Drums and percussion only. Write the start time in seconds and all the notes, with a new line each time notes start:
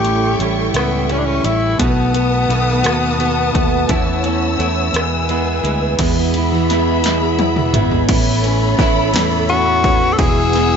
0.05 closed hi-hat
0.40 closed hi-hat
0.74 cross-stick, closed hi-hat
1.09 closed hi-hat
1.44 closed hi-hat
1.79 kick, closed hi-hat
2.14 closed hi-hat
2.50 closed hi-hat
2.84 cross-stick, closed hi-hat
3.20 closed hi-hat
3.55 kick, closed hi-hat
3.89 kick, closed hi-hat
4.24 closed hi-hat
4.60 closed hi-hat
4.94 cross-stick, closed hi-hat
5.29 closed hi-hat
5.65 closed hi-hat
5.99 kick, closed hi-hat, crash
6.34 closed hi-hat
6.70 snare, closed hi-hat
7.04 snare, closed hi-hat
7.39 closed hi-hat, high tom
7.56 mid tom
7.74 closed hi-hat, mid tom
7.91 floor tom
8.09 kick, crash, ride
8.44 ride
8.79 kick, snare, ride
9.14 snare, ride
9.49 ride
9.84 kick, ride
10.19 kick, ride
10.53 snare, ride